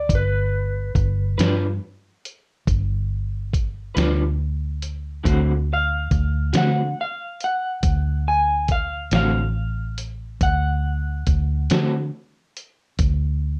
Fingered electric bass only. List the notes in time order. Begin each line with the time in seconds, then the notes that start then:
0.09 G1
0.95 G1
1.39 G2
2.67 G1
3.97 D2
5.26 D2
6.11 D2
6.54 D3
7.83 D2
9.12 A1
10.41 D2
11.27 D2
11.71 D3
12.99 D2